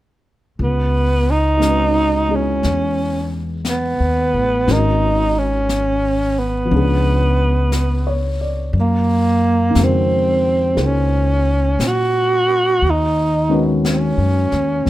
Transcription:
0.59 upright bass C#2, brush sweep
0.63 tenor saxophone B3
1.31 tenor saxophone D#4
1.57 grand piano G#3 D#4
1.62 grand piano C#4, brush sweep, snare, hi-hat pedal
1.68 grand piano B4
2.28 grand piano G#3 B3 E4 G#4
2.35 tenor saxophone C#4
2.63 upright bass E2, brush sweep, snare
3.65 brush sweep, snare, hi-hat pedal
3.70 tenor saxophone B3
4.00 upright bass D#2
4.34 upright bass A1
4.67 upright bass G#1, grand piano D#3 G#3 C#4 F#4 A#4, brush sweep, snare
4.72 tenor saxophone D#4
5.38 tenor saxophone C#4
5.69 brush sweep, snare, hi-hat pedal
6.39 tenor saxophone B3
6.65 grand piano F3 B3
6.70 upright bass C#2, grand piano C#4 D4, brush sweep
6.76 grand piano G#4
7.72 grand piano B4, brush sweep, snare, hi-hat pedal
8.07 grand piano C#5
8.41 grand piano D5
8.73 upright bass F#2, brush sweep
8.80 tenor saxophone A#3
9.70 grand piano D#3 G#3
9.75 upright bass F2, grand piano C#3 F#4, brush sweep, snare, hi-hat pedal
9.81 tenor saxophone C4, grand piano A#4
10.74 upright bass C#2, grand piano A#3 D#4 G#4 C5, brush sweep, snare
10.86 tenor saxophone C#4
11.79 upright bass A#2, brush sweep, snare, hi-hat pedal
11.87 tenor saxophone F#4
12.82 upright bass D#2, brush sweep
12.90 tenor saxophone D#4
13.49 grand piano D#3 G#3 C#4 F#4 B4
13.85 brush sweep, snare, hi-hat pedal
13.91 tenor saxophone C#4
14.18 upright bass F#2
14.52 upright bass D#2, snare
14.85 upright bass D2, grand piano F#3 B4, brush sweep, snare

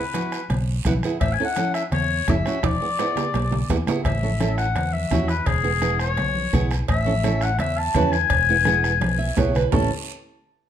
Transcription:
Already playing: oboe B4
0.14 nylon-string guitar B3 E4 F#4, bombo rim, cowbell, high conga, short guiro
0.32 bombo rim, short guiro
0.50 fingered electric bass B1, bombo rim, cowbell, high conga, low conga, long guiro
0.85 fingered electric bass B1, nylon-string guitar B3 E4 B4, bombo low, bombo rim, cowbell, high conga, low conga, short guiro
1.03 nylon-string guitar B3 E4 G#4, bombo rim, short guiro
1.20 fingered electric bass A1, oboe E5, bombo low, bombo rim, cowbell, long guiro
1.33 oboe G#5
1.40 nylon-string guitar C#4 E4 A4
1.45 oboe F#5
1.56 nylon-string guitar C#4 E4 A4, bombo rim, cowbell, high conga, short guiro
1.74 oboe E5, bombo rim, short guiro
1.92 fingered electric bass E2, oboe C#5, bombo rim, cowbell, high conga, low conga, long guiro
2.27 fingered electric bass F#1, nylon-string guitar C#4 E4 A4, oboe E5, bombo low, bombo rim, cowbell, high conga, low timbale, short guiro
2.46 nylon-string guitar C#4 E4 F#4, bombo rim, short guiro
2.63 fingered electric bass E1, oboe D5, bombo low, bombo rim, cowbell, high conga, high timbale, long guiro
2.81 nylon-string guitar B3 E4 G#4, high conga
2.99 nylon-string guitar B3 E4 G#4, bombo rim, cowbell, high timbale, short guiro
3.16 bombo rim, low conga, low timbale, short guiro
3.34 fingered electric bass B1, bombo rim, cowbell, low conga, low timbale, long guiro
3.51 low conga, low timbale
3.70 fingered electric bass E2, nylon-string guitar B3 E4 G#4, bombo low, bombo rim, cowbell, low timbale, short guiro
3.87 nylon-string guitar B3 E4 G#4, bombo rim, low conga, low timbale, short guiro
4.05 fingered electric bass A1, oboe E5, bombo low, bombo rim, cowbell, high conga, low conga, long guiro
4.23 nylon-string guitar C#4 E4 A4, high conga
4.40 nylon-string guitar C#4 E4 A4, bombo rim, high conga, short guiro
4.58 oboe F#5, bombo rim, short guiro
4.76 fingered electric bass E2, bombo rim, cowbell, high conga, low conga, long guiro
4.93 oboe E5, high conga
5.11 fingered electric bass E2, nylon-string guitar C#4 E4 F#4, bombo low, bombo rim, high conga, low timbale, short guiro
5.28 oboe B4, bombo rim, short guiro
5.46 fingered electric bass E1, oboe G#4, bombo low, bombo rim, cowbell, high conga, low conga, long guiro
5.63 nylon-string guitar B3 E4 G#4
5.81 nylon-string guitar B3 E4 G#4, bombo rim, high conga, short guiro
5.99 oboe C#5, bombo rim, short guiro
6.17 fingered electric bass B1, bombo rim, cowbell, high conga, low conga, long guiro
6.35 high conga
6.53 fingered electric bass B1, nylon-string guitar B3 E4 G#4, bombo low, bombo rim, high conga, low conga, short guiro
6.71 bombo rim, short guiro
6.88 fingered electric bass A1, oboe E5, bombo low, bombo rim, cowbell, high conga, long guiro
7.05 nylon-string guitar C#4 E4 A4, high conga
7.24 nylon-string guitar C#4 E4 A4, bombo rim, high conga, short guiro
7.41 oboe F#5, bombo rim, short guiro
7.59 fingered electric bass E2, oboe E5, bombo rim, cowbell, high conga, low conga, long guiro
7.78 oboe A5
7.94 fingered electric bass E2, nylon-string guitar C#4 E4 B4, bombo low, bombo rim, high conga, low conga, low timbale, short guiro
8.11 oboe G#5, bombo rim, short guiro
8.30 fingered electric bass E1, bombo low, bombo rim, cowbell, high conga, long guiro
8.49 nylon-string guitar B3 E4 G#4
8.65 nylon-string guitar B3 E4 G#4, bombo rim, high conga, short guiro
8.84 bombo rim, short guiro
9.01 fingered electric bass B1, bombo rim, cowbell, high conga, long guiro
9.19 nylon-string guitar E5
9.37 fingered electric bass B1, nylon-string guitar B3 E4 G#4 C#5, bombo low, bombo rim, low conga, low timbale, short guiro
9.54 nylon-string guitar B4, bombo rim, low conga, short guiro
9.72 fingered electric bass A1, nylon-string guitar C#4 E4 A4, oboe A5, bombo low, low conga, low timbale, long guiro

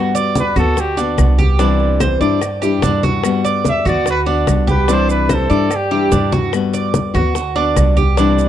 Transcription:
Already playing: upright bass G2, nylon-string guitar G3 B3 F#4, cuban tres F#4
0.15 cuban tres D5, high bongo, high conga, maracas
0.35 trumpet B4, high bongo, high conga, maracas
0.56 upright bass D2, nylon-string guitar B3 F#4, cuban tres F#4, trumpet A4, high bongo, high conga, low conga, claves, maracas
0.76 trumpet G4, muted nylon-string guitar stroke, high bongo, high conga, maracas
0.97 nylon-string guitar B3 F#4, cuban tres D4, high conga, maracas
1.18 upright bass C2, nylon-string guitar G3 B3 F#4, high bongo, low bongo, high conga, claves, maracas
1.38 cuban tres G4, high bongo, high conga, maracas
1.59 nylon-string guitar C3 E3 G3 D4 E4, cuban tres D4, high bongo, maracas
1.80 high bongo, high conga
2.00 cuban tres C5, high bongo, high conga, claves, maracas
2.21 upright bass G2, nylon-string guitar E3 G3 D4 E4, cuban tres D5, high conga, maracas
2.41 muted nylon-string guitar stroke, high bongo, high conga, claves, maracas
2.62 nylon-string guitar E3 G3 D4 E4, cuban tres G4, high bongo, high conga, maracas
2.82 upright bass G2, nylon-string guitar E3 G3 D4 E4, cuban tres D4, high bongo, low bongo, high conga, maracas
3.03 cuban tres F#4, high bongo, high conga, maracas
3.24 nylon-string guitar G3 B3 F#4, high bongo, high conga, claves, maracas
3.44 cuban tres D5, high bongo, high conga, maracas
3.64 high bongo, high conga, maracas
3.69 trumpet E5
3.85 upright bass D2, nylon-string guitar B3 F#4, cuban tres F#4, trumpet D5, high bongo, high conga, low conga, claves, maracas
4.06 muted nylon-string guitar stroke, high bongo, high conga, maracas
4.10 trumpet B4
4.26 nylon-string guitar B3 F#4, cuban tres D4, high conga
4.47 upright bass C2, nylon-string guitar G3 B3 F#4, high bongo, low bongo, high conga, claves, maracas
4.67 cuban tres G4, trumpet B4, high bongo, high conga, maracas
4.88 nylon-string guitar C3 E3 G3 D4 E4, cuban tres D4, trumpet C5, high bongo, high conga, maracas
5.09 trumpet B4, high bongo, high conga, maracas
5.29 cuban tres C5, high bongo, high conga, claves, maracas
5.34 trumpet A4
5.50 upright bass G2, nylon-string guitar E3 G3 D4 E4, cuban tres D5, high conga, maracas
5.70 muted nylon-string guitar stroke, high bongo, high conga, claves, maracas
5.76 trumpet G4
5.91 nylon-string guitar E3 G3 D4 E4, cuban tres G4, high bongo, high conga
6.11 upright bass G2, nylon-string guitar E3 G3 D4 E4, cuban tres D4, high bongo, high conga, maracas
6.32 cuban tres F#4, low bongo, high conga, maracas
6.53 nylon-string guitar G3 B3 F#4, high bongo, high conga, claves, maracas
6.73 cuban tres D5, high bongo, high conga, maracas
6.94 high bongo, high conga, maracas
7.14 upright bass D2, nylon-string guitar B3 F#4, cuban tres F#4, high bongo, high conga, low conga, claves, maracas
7.35 muted nylon-string guitar stroke, high bongo, high conga, maracas
7.56 nylon-string guitar B3 F#4, cuban tres D4, high conga
7.76 upright bass C2, nylon-string guitar G3 B3 F#4, high bongo, low bongo, high conga, claves, maracas
7.97 cuban tres G4, high bongo, high conga, maracas
8.17 nylon-string guitar C3 E3 G3 D4 E4, cuban tres D4, high bongo, high conga, maracas
8.38 high bongo, high conga, maracas

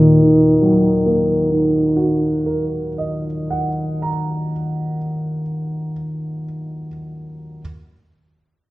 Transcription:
Already playing: grand piano D#2 A#2, french horn D#3
0.22 grand piano D#3
0.62 grand piano F#3
1.06 grand piano A#3
1.51 grand piano D#4
1.96 grand piano F#4
2.46 grand piano A#4
2.98 grand piano D#5
3.50 grand piano F#5
4.02 grand piano A#5

